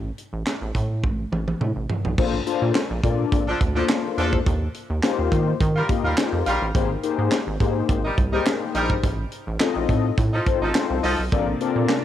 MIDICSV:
0, 0, Header, 1, 6, 480
1, 0, Start_track
1, 0, Key_signature, -2, "major"
1, 0, Tempo, 571429
1, 1832, Time_signature, 4, 2, 24, 8
1, 10119, End_track
2, 0, Start_track
2, 0, Title_t, "Analog polysynth"
2, 0, Program_c, 0, 90
2, 1827, Note_on_c, 0, 58, 90
2, 1830, Note_on_c, 0, 62, 82
2, 1830, Note_on_c, 0, 65, 88
2, 1833, Note_on_c, 0, 69, 85
2, 1835, Note_on_c, 0, 72, 101
2, 1944, Note_off_c, 0, 58, 0
2, 1947, Note_off_c, 0, 62, 0
2, 1948, Note_off_c, 0, 65, 0
2, 1951, Note_off_c, 0, 69, 0
2, 1952, Note_off_c, 0, 72, 0
2, 2066, Note_on_c, 0, 58, 90
2, 2069, Note_on_c, 0, 62, 90
2, 2070, Note_on_c, 0, 65, 89
2, 2072, Note_on_c, 0, 69, 91
2, 2073, Note_on_c, 0, 72, 99
2, 2330, Note_off_c, 0, 58, 0
2, 2331, Note_off_c, 0, 62, 0
2, 2332, Note_off_c, 0, 65, 0
2, 2333, Note_off_c, 0, 69, 0
2, 2333, Note_off_c, 0, 72, 0
2, 2547, Note_on_c, 0, 58, 88
2, 2549, Note_on_c, 0, 62, 78
2, 2551, Note_on_c, 0, 65, 72
2, 2552, Note_on_c, 0, 69, 74
2, 2555, Note_on_c, 0, 74, 89
2, 2879, Note_off_c, 0, 58, 0
2, 2880, Note_off_c, 0, 62, 0
2, 2881, Note_off_c, 0, 65, 0
2, 2882, Note_off_c, 0, 69, 0
2, 2883, Note_off_c, 0, 74, 0
2, 3157, Note_on_c, 0, 58, 93
2, 3161, Note_on_c, 0, 62, 81
2, 3161, Note_on_c, 0, 65, 73
2, 3163, Note_on_c, 0, 69, 71
2, 3166, Note_on_c, 0, 72, 92
2, 3675, Note_off_c, 0, 58, 0
2, 3677, Note_off_c, 0, 62, 0
2, 3677, Note_off_c, 0, 65, 0
2, 3678, Note_off_c, 0, 69, 0
2, 3679, Note_off_c, 0, 72, 0
2, 4227, Note_on_c, 0, 58, 104
2, 4228, Note_on_c, 0, 63, 94
2, 4232, Note_on_c, 0, 65, 96
2, 4233, Note_on_c, 0, 67, 92
2, 4234, Note_on_c, 0, 72, 116
2, 4625, Note_off_c, 0, 58, 0
2, 4625, Note_off_c, 0, 63, 0
2, 4627, Note_off_c, 0, 65, 0
2, 4627, Note_off_c, 0, 67, 0
2, 4628, Note_off_c, 0, 72, 0
2, 4946, Note_on_c, 0, 58, 90
2, 4948, Note_on_c, 0, 63, 77
2, 4949, Note_on_c, 0, 65, 78
2, 4951, Note_on_c, 0, 67, 76
2, 4953, Note_on_c, 0, 75, 88
2, 5064, Note_off_c, 0, 58, 0
2, 5066, Note_off_c, 0, 63, 0
2, 5067, Note_off_c, 0, 65, 0
2, 5069, Note_off_c, 0, 67, 0
2, 5070, Note_off_c, 0, 75, 0
2, 5186, Note_on_c, 0, 58, 82
2, 5188, Note_on_c, 0, 63, 78
2, 5188, Note_on_c, 0, 65, 77
2, 5192, Note_on_c, 0, 67, 74
2, 5192, Note_on_c, 0, 72, 86
2, 5450, Note_off_c, 0, 58, 0
2, 5451, Note_off_c, 0, 63, 0
2, 5451, Note_off_c, 0, 65, 0
2, 5453, Note_off_c, 0, 67, 0
2, 5453, Note_off_c, 0, 72, 0
2, 5665, Note_on_c, 0, 58, 95
2, 5667, Note_on_c, 0, 63, 80
2, 5669, Note_on_c, 0, 67, 87
2, 5670, Note_on_c, 0, 68, 85
2, 5674, Note_on_c, 0, 72, 103
2, 5783, Note_off_c, 0, 58, 0
2, 5785, Note_off_c, 0, 63, 0
2, 5787, Note_off_c, 0, 67, 0
2, 5788, Note_off_c, 0, 68, 0
2, 5792, Note_off_c, 0, 72, 0
2, 5905, Note_on_c, 0, 58, 101
2, 5908, Note_on_c, 0, 63, 87
2, 5910, Note_on_c, 0, 67, 93
2, 5911, Note_on_c, 0, 68, 88
2, 5914, Note_on_c, 0, 72, 103
2, 6169, Note_off_c, 0, 58, 0
2, 6171, Note_off_c, 0, 63, 0
2, 6172, Note_off_c, 0, 67, 0
2, 6172, Note_off_c, 0, 68, 0
2, 6174, Note_off_c, 0, 72, 0
2, 6386, Note_on_c, 0, 58, 92
2, 6388, Note_on_c, 0, 63, 75
2, 6388, Note_on_c, 0, 67, 77
2, 6389, Note_on_c, 0, 68, 75
2, 6392, Note_on_c, 0, 72, 89
2, 6718, Note_off_c, 0, 58, 0
2, 6719, Note_off_c, 0, 63, 0
2, 6719, Note_off_c, 0, 67, 0
2, 6720, Note_off_c, 0, 68, 0
2, 6722, Note_off_c, 0, 72, 0
2, 6992, Note_on_c, 0, 58, 86
2, 6995, Note_on_c, 0, 63, 77
2, 6996, Note_on_c, 0, 67, 78
2, 6996, Note_on_c, 0, 68, 75
2, 7000, Note_on_c, 0, 72, 93
2, 7512, Note_off_c, 0, 58, 0
2, 7514, Note_off_c, 0, 63, 0
2, 7514, Note_off_c, 0, 67, 0
2, 7515, Note_off_c, 0, 68, 0
2, 7516, Note_off_c, 0, 72, 0
2, 8065, Note_on_c, 0, 60, 98
2, 8067, Note_on_c, 0, 63, 93
2, 8067, Note_on_c, 0, 65, 95
2, 8070, Note_on_c, 0, 69, 89
2, 8072, Note_on_c, 0, 75, 109
2, 8463, Note_off_c, 0, 60, 0
2, 8464, Note_off_c, 0, 63, 0
2, 8465, Note_off_c, 0, 65, 0
2, 8466, Note_off_c, 0, 69, 0
2, 8467, Note_off_c, 0, 75, 0
2, 8788, Note_on_c, 0, 60, 80
2, 8788, Note_on_c, 0, 65, 78
2, 8789, Note_on_c, 0, 63, 68
2, 8791, Note_on_c, 0, 69, 78
2, 8792, Note_on_c, 0, 72, 88
2, 8905, Note_off_c, 0, 60, 0
2, 8906, Note_off_c, 0, 65, 0
2, 8907, Note_off_c, 0, 63, 0
2, 8909, Note_off_c, 0, 69, 0
2, 8910, Note_off_c, 0, 72, 0
2, 9028, Note_on_c, 0, 60, 89
2, 9029, Note_on_c, 0, 63, 77
2, 9031, Note_on_c, 0, 65, 78
2, 9032, Note_on_c, 0, 69, 77
2, 9034, Note_on_c, 0, 72, 95
2, 9291, Note_off_c, 0, 60, 0
2, 9291, Note_off_c, 0, 63, 0
2, 9292, Note_off_c, 0, 65, 0
2, 9293, Note_off_c, 0, 69, 0
2, 9294, Note_off_c, 0, 72, 0
2, 9506, Note_on_c, 0, 60, 91
2, 9509, Note_on_c, 0, 65, 91
2, 9510, Note_on_c, 0, 69, 82
2, 9513, Note_on_c, 0, 70, 79
2, 9513, Note_on_c, 0, 74, 101
2, 9623, Note_off_c, 0, 60, 0
2, 9626, Note_off_c, 0, 65, 0
2, 9628, Note_off_c, 0, 69, 0
2, 9631, Note_off_c, 0, 70, 0
2, 9631, Note_off_c, 0, 74, 0
2, 9748, Note_on_c, 0, 60, 91
2, 9751, Note_on_c, 0, 65, 91
2, 9753, Note_on_c, 0, 69, 96
2, 9754, Note_on_c, 0, 70, 90
2, 9755, Note_on_c, 0, 74, 103
2, 10011, Note_off_c, 0, 60, 0
2, 10012, Note_off_c, 0, 65, 0
2, 10013, Note_off_c, 0, 69, 0
2, 10014, Note_off_c, 0, 70, 0
2, 10014, Note_off_c, 0, 74, 0
2, 10119, End_track
3, 0, Start_track
3, 0, Title_t, "Horn section"
3, 0, Program_c, 1, 61
3, 2918, Note_on_c, 1, 69, 104
3, 2920, Note_on_c, 1, 53, 85
3, 2921, Note_on_c, 1, 62, 87
3, 3014, Note_off_c, 1, 69, 0
3, 3016, Note_off_c, 1, 53, 0
3, 3016, Note_off_c, 1, 62, 0
3, 3156, Note_on_c, 1, 53, 92
3, 3157, Note_on_c, 1, 62, 93
3, 3158, Note_on_c, 1, 69, 104
3, 3253, Note_off_c, 1, 53, 0
3, 3254, Note_off_c, 1, 62, 0
3, 3254, Note_off_c, 1, 69, 0
3, 3513, Note_on_c, 1, 69, 109
3, 3514, Note_on_c, 1, 53, 92
3, 3515, Note_on_c, 1, 62, 100
3, 3666, Note_off_c, 1, 69, 0
3, 3667, Note_off_c, 1, 53, 0
3, 3667, Note_off_c, 1, 62, 0
3, 4841, Note_on_c, 1, 65, 88
3, 4842, Note_on_c, 1, 55, 88
3, 4842, Note_on_c, 1, 70, 103
3, 4936, Note_off_c, 1, 65, 0
3, 4937, Note_off_c, 1, 55, 0
3, 4937, Note_off_c, 1, 70, 0
3, 5081, Note_on_c, 1, 70, 105
3, 5082, Note_on_c, 1, 55, 86
3, 5082, Note_on_c, 1, 65, 94
3, 5176, Note_off_c, 1, 65, 0
3, 5176, Note_off_c, 1, 70, 0
3, 5177, Note_off_c, 1, 55, 0
3, 5434, Note_on_c, 1, 55, 106
3, 5434, Note_on_c, 1, 65, 105
3, 5435, Note_on_c, 1, 70, 116
3, 5586, Note_off_c, 1, 55, 0
3, 5586, Note_off_c, 1, 65, 0
3, 5587, Note_off_c, 1, 70, 0
3, 6761, Note_on_c, 1, 55, 90
3, 6761, Note_on_c, 1, 63, 81
3, 6762, Note_on_c, 1, 70, 89
3, 6856, Note_off_c, 1, 55, 0
3, 6856, Note_off_c, 1, 63, 0
3, 6856, Note_off_c, 1, 70, 0
3, 6998, Note_on_c, 1, 63, 88
3, 6998, Note_on_c, 1, 70, 94
3, 7000, Note_on_c, 1, 55, 85
3, 7094, Note_off_c, 1, 63, 0
3, 7094, Note_off_c, 1, 70, 0
3, 7096, Note_off_c, 1, 55, 0
3, 7352, Note_on_c, 1, 55, 104
3, 7353, Note_on_c, 1, 63, 94
3, 7354, Note_on_c, 1, 70, 112
3, 7505, Note_off_c, 1, 55, 0
3, 7506, Note_off_c, 1, 63, 0
3, 7506, Note_off_c, 1, 70, 0
3, 8679, Note_on_c, 1, 69, 93
3, 8680, Note_on_c, 1, 53, 90
3, 8680, Note_on_c, 1, 63, 85
3, 8775, Note_off_c, 1, 69, 0
3, 8776, Note_off_c, 1, 53, 0
3, 8776, Note_off_c, 1, 63, 0
3, 8922, Note_on_c, 1, 63, 92
3, 8924, Note_on_c, 1, 53, 88
3, 8924, Note_on_c, 1, 69, 93
3, 9017, Note_off_c, 1, 63, 0
3, 9018, Note_off_c, 1, 53, 0
3, 9018, Note_off_c, 1, 69, 0
3, 9270, Note_on_c, 1, 69, 107
3, 9271, Note_on_c, 1, 53, 105
3, 9272, Note_on_c, 1, 63, 101
3, 9424, Note_off_c, 1, 69, 0
3, 9425, Note_off_c, 1, 53, 0
3, 9425, Note_off_c, 1, 63, 0
3, 10119, End_track
4, 0, Start_track
4, 0, Title_t, "String machine"
4, 0, Program_c, 2, 50
4, 9509, Note_on_c, 2, 48, 79
4, 9509, Note_on_c, 2, 58, 79
4, 9509, Note_on_c, 2, 62, 98
4, 10119, Note_off_c, 2, 48, 0
4, 10119, Note_off_c, 2, 58, 0
4, 10119, Note_off_c, 2, 62, 0
4, 10119, End_track
5, 0, Start_track
5, 0, Title_t, "Analog synth bass"
5, 0, Program_c, 3, 38
5, 0, Note_on_c, 3, 33, 98
5, 95, Note_off_c, 3, 33, 0
5, 277, Note_on_c, 3, 33, 100
5, 364, Note_off_c, 3, 33, 0
5, 517, Note_on_c, 3, 33, 105
5, 604, Note_off_c, 3, 33, 0
5, 628, Note_on_c, 3, 45, 93
5, 869, Note_on_c, 3, 33, 88
5, 882, Note_off_c, 3, 45, 0
5, 1054, Note_off_c, 3, 33, 0
5, 1110, Note_on_c, 3, 33, 93
5, 1294, Note_off_c, 3, 33, 0
5, 1350, Note_on_c, 3, 45, 95
5, 1448, Note_off_c, 3, 45, 0
5, 1479, Note_on_c, 3, 33, 87
5, 1565, Note_off_c, 3, 33, 0
5, 1720, Note_on_c, 3, 35, 90
5, 1806, Note_off_c, 3, 35, 0
5, 1832, Note_on_c, 3, 34, 105
5, 2016, Note_off_c, 3, 34, 0
5, 2199, Note_on_c, 3, 46, 106
5, 2285, Note_off_c, 3, 46, 0
5, 2438, Note_on_c, 3, 34, 112
5, 2525, Note_off_c, 3, 34, 0
5, 2549, Note_on_c, 3, 46, 89
5, 2734, Note_off_c, 3, 46, 0
5, 2789, Note_on_c, 3, 34, 95
5, 2974, Note_off_c, 3, 34, 0
5, 3031, Note_on_c, 3, 38, 99
5, 3215, Note_off_c, 3, 38, 0
5, 3509, Note_on_c, 3, 40, 90
5, 3693, Note_off_c, 3, 40, 0
5, 3750, Note_on_c, 3, 39, 97
5, 3934, Note_off_c, 3, 39, 0
5, 4116, Note_on_c, 3, 39, 100
5, 4204, Note_off_c, 3, 39, 0
5, 4356, Note_on_c, 3, 39, 100
5, 4444, Note_off_c, 3, 39, 0
5, 4467, Note_on_c, 3, 51, 98
5, 4653, Note_off_c, 3, 51, 0
5, 4708, Note_on_c, 3, 51, 106
5, 4893, Note_off_c, 3, 51, 0
5, 5074, Note_on_c, 3, 39, 86
5, 5162, Note_off_c, 3, 39, 0
5, 5314, Note_on_c, 3, 41, 95
5, 5403, Note_off_c, 3, 41, 0
5, 5430, Note_on_c, 3, 34, 91
5, 5528, Note_off_c, 3, 34, 0
5, 5558, Note_on_c, 3, 33, 100
5, 5645, Note_off_c, 3, 33, 0
5, 5668, Note_on_c, 3, 32, 108
5, 5853, Note_off_c, 3, 32, 0
5, 6034, Note_on_c, 3, 44, 105
5, 6123, Note_off_c, 3, 44, 0
5, 6275, Note_on_c, 3, 32, 116
5, 6363, Note_off_c, 3, 32, 0
5, 6386, Note_on_c, 3, 44, 101
5, 6572, Note_off_c, 3, 44, 0
5, 6627, Note_on_c, 3, 32, 98
5, 6812, Note_off_c, 3, 32, 0
5, 6869, Note_on_c, 3, 36, 96
5, 7054, Note_off_c, 3, 36, 0
5, 7348, Note_on_c, 3, 34, 95
5, 7533, Note_off_c, 3, 34, 0
5, 7589, Note_on_c, 3, 33, 109
5, 7774, Note_off_c, 3, 33, 0
5, 7957, Note_on_c, 3, 33, 112
5, 8044, Note_off_c, 3, 33, 0
5, 8197, Note_on_c, 3, 33, 106
5, 8284, Note_off_c, 3, 33, 0
5, 8308, Note_on_c, 3, 45, 88
5, 8493, Note_off_c, 3, 45, 0
5, 8548, Note_on_c, 3, 45, 100
5, 8733, Note_off_c, 3, 45, 0
5, 8917, Note_on_c, 3, 33, 95
5, 9004, Note_off_c, 3, 33, 0
5, 9157, Note_on_c, 3, 36, 92
5, 9244, Note_off_c, 3, 36, 0
5, 9271, Note_on_c, 3, 36, 96
5, 9369, Note_off_c, 3, 36, 0
5, 9397, Note_on_c, 3, 35, 88
5, 9484, Note_off_c, 3, 35, 0
5, 9511, Note_on_c, 3, 34, 112
5, 9695, Note_off_c, 3, 34, 0
5, 9876, Note_on_c, 3, 46, 101
5, 9963, Note_off_c, 3, 46, 0
5, 10119, End_track
6, 0, Start_track
6, 0, Title_t, "Drums"
6, 151, Note_on_c, 9, 42, 63
6, 235, Note_off_c, 9, 42, 0
6, 391, Note_on_c, 9, 39, 71
6, 392, Note_on_c, 9, 38, 81
6, 392, Note_on_c, 9, 42, 73
6, 475, Note_off_c, 9, 39, 0
6, 476, Note_off_c, 9, 38, 0
6, 476, Note_off_c, 9, 42, 0
6, 629, Note_on_c, 9, 36, 84
6, 636, Note_on_c, 9, 42, 74
6, 713, Note_off_c, 9, 36, 0
6, 720, Note_off_c, 9, 42, 0
6, 870, Note_on_c, 9, 36, 99
6, 872, Note_on_c, 9, 48, 46
6, 954, Note_off_c, 9, 36, 0
6, 956, Note_off_c, 9, 48, 0
6, 1113, Note_on_c, 9, 47, 62
6, 1197, Note_off_c, 9, 47, 0
6, 1241, Note_on_c, 9, 47, 63
6, 1325, Note_off_c, 9, 47, 0
6, 1353, Note_on_c, 9, 45, 80
6, 1437, Note_off_c, 9, 45, 0
6, 1592, Note_on_c, 9, 43, 86
6, 1676, Note_off_c, 9, 43, 0
6, 1720, Note_on_c, 9, 43, 83
6, 1804, Note_off_c, 9, 43, 0
6, 1832, Note_on_c, 9, 36, 121
6, 1832, Note_on_c, 9, 49, 101
6, 1916, Note_off_c, 9, 36, 0
6, 1916, Note_off_c, 9, 49, 0
6, 2071, Note_on_c, 9, 42, 69
6, 2155, Note_off_c, 9, 42, 0
6, 2311, Note_on_c, 9, 39, 77
6, 2312, Note_on_c, 9, 38, 101
6, 2312, Note_on_c, 9, 42, 89
6, 2395, Note_off_c, 9, 39, 0
6, 2396, Note_off_c, 9, 38, 0
6, 2396, Note_off_c, 9, 42, 0
6, 2549, Note_on_c, 9, 36, 93
6, 2555, Note_on_c, 9, 42, 77
6, 2633, Note_off_c, 9, 36, 0
6, 2639, Note_off_c, 9, 42, 0
6, 2790, Note_on_c, 9, 36, 112
6, 2792, Note_on_c, 9, 42, 94
6, 2874, Note_off_c, 9, 36, 0
6, 2876, Note_off_c, 9, 42, 0
6, 3030, Note_on_c, 9, 42, 85
6, 3031, Note_on_c, 9, 36, 102
6, 3114, Note_off_c, 9, 42, 0
6, 3115, Note_off_c, 9, 36, 0
6, 3270, Note_on_c, 9, 39, 99
6, 3270, Note_on_c, 9, 42, 106
6, 3271, Note_on_c, 9, 38, 126
6, 3354, Note_off_c, 9, 39, 0
6, 3354, Note_off_c, 9, 42, 0
6, 3355, Note_off_c, 9, 38, 0
6, 3510, Note_on_c, 9, 42, 85
6, 3594, Note_off_c, 9, 42, 0
6, 3636, Note_on_c, 9, 36, 101
6, 3720, Note_off_c, 9, 36, 0
6, 3749, Note_on_c, 9, 42, 90
6, 3750, Note_on_c, 9, 36, 117
6, 3833, Note_off_c, 9, 42, 0
6, 3834, Note_off_c, 9, 36, 0
6, 3986, Note_on_c, 9, 42, 70
6, 4070, Note_off_c, 9, 42, 0
6, 4228, Note_on_c, 9, 39, 74
6, 4229, Note_on_c, 9, 38, 105
6, 4229, Note_on_c, 9, 42, 90
6, 4312, Note_off_c, 9, 39, 0
6, 4313, Note_off_c, 9, 38, 0
6, 4313, Note_off_c, 9, 42, 0
6, 4468, Note_on_c, 9, 36, 96
6, 4473, Note_on_c, 9, 42, 75
6, 4552, Note_off_c, 9, 36, 0
6, 4557, Note_off_c, 9, 42, 0
6, 4709, Note_on_c, 9, 36, 117
6, 4712, Note_on_c, 9, 42, 99
6, 4793, Note_off_c, 9, 36, 0
6, 4796, Note_off_c, 9, 42, 0
6, 4950, Note_on_c, 9, 36, 112
6, 4950, Note_on_c, 9, 42, 84
6, 5034, Note_off_c, 9, 36, 0
6, 5034, Note_off_c, 9, 42, 0
6, 5189, Note_on_c, 9, 39, 102
6, 5189, Note_on_c, 9, 42, 103
6, 5191, Note_on_c, 9, 38, 127
6, 5273, Note_off_c, 9, 39, 0
6, 5273, Note_off_c, 9, 42, 0
6, 5275, Note_off_c, 9, 38, 0
6, 5427, Note_on_c, 9, 42, 85
6, 5511, Note_off_c, 9, 42, 0
6, 5667, Note_on_c, 9, 42, 93
6, 5669, Note_on_c, 9, 36, 119
6, 5751, Note_off_c, 9, 42, 0
6, 5753, Note_off_c, 9, 36, 0
6, 5907, Note_on_c, 9, 42, 64
6, 5991, Note_off_c, 9, 42, 0
6, 6146, Note_on_c, 9, 39, 81
6, 6146, Note_on_c, 9, 42, 85
6, 6147, Note_on_c, 9, 38, 91
6, 6230, Note_off_c, 9, 39, 0
6, 6230, Note_off_c, 9, 42, 0
6, 6231, Note_off_c, 9, 38, 0
6, 6387, Note_on_c, 9, 36, 94
6, 6392, Note_on_c, 9, 42, 74
6, 6471, Note_off_c, 9, 36, 0
6, 6476, Note_off_c, 9, 42, 0
6, 6628, Note_on_c, 9, 36, 116
6, 6629, Note_on_c, 9, 42, 93
6, 6712, Note_off_c, 9, 36, 0
6, 6713, Note_off_c, 9, 42, 0
6, 6867, Note_on_c, 9, 42, 84
6, 6870, Note_on_c, 9, 36, 118
6, 6951, Note_off_c, 9, 42, 0
6, 6954, Note_off_c, 9, 36, 0
6, 7110, Note_on_c, 9, 39, 104
6, 7110, Note_on_c, 9, 42, 101
6, 7111, Note_on_c, 9, 38, 123
6, 7194, Note_off_c, 9, 39, 0
6, 7194, Note_off_c, 9, 42, 0
6, 7195, Note_off_c, 9, 38, 0
6, 7346, Note_on_c, 9, 42, 84
6, 7430, Note_off_c, 9, 42, 0
6, 7474, Note_on_c, 9, 36, 104
6, 7558, Note_off_c, 9, 36, 0
6, 7587, Note_on_c, 9, 42, 95
6, 7589, Note_on_c, 9, 36, 118
6, 7671, Note_off_c, 9, 42, 0
6, 7673, Note_off_c, 9, 36, 0
6, 7826, Note_on_c, 9, 42, 72
6, 7910, Note_off_c, 9, 42, 0
6, 8066, Note_on_c, 9, 39, 81
6, 8067, Note_on_c, 9, 38, 88
6, 8067, Note_on_c, 9, 42, 86
6, 8150, Note_off_c, 9, 39, 0
6, 8151, Note_off_c, 9, 38, 0
6, 8151, Note_off_c, 9, 42, 0
6, 8307, Note_on_c, 9, 36, 84
6, 8313, Note_on_c, 9, 42, 80
6, 8391, Note_off_c, 9, 36, 0
6, 8397, Note_off_c, 9, 42, 0
6, 8549, Note_on_c, 9, 36, 117
6, 8550, Note_on_c, 9, 42, 86
6, 8633, Note_off_c, 9, 36, 0
6, 8634, Note_off_c, 9, 42, 0
6, 8789, Note_on_c, 9, 42, 80
6, 8791, Note_on_c, 9, 36, 115
6, 8873, Note_off_c, 9, 42, 0
6, 8875, Note_off_c, 9, 36, 0
6, 9030, Note_on_c, 9, 39, 103
6, 9030, Note_on_c, 9, 42, 106
6, 9031, Note_on_c, 9, 38, 117
6, 9114, Note_off_c, 9, 39, 0
6, 9114, Note_off_c, 9, 42, 0
6, 9115, Note_off_c, 9, 38, 0
6, 9269, Note_on_c, 9, 46, 83
6, 9353, Note_off_c, 9, 46, 0
6, 9510, Note_on_c, 9, 42, 94
6, 9511, Note_on_c, 9, 36, 127
6, 9594, Note_off_c, 9, 42, 0
6, 9595, Note_off_c, 9, 36, 0
6, 9749, Note_on_c, 9, 42, 66
6, 9833, Note_off_c, 9, 42, 0
6, 9990, Note_on_c, 9, 39, 84
6, 9991, Note_on_c, 9, 42, 82
6, 9992, Note_on_c, 9, 38, 95
6, 10074, Note_off_c, 9, 39, 0
6, 10075, Note_off_c, 9, 42, 0
6, 10076, Note_off_c, 9, 38, 0
6, 10119, End_track
0, 0, End_of_file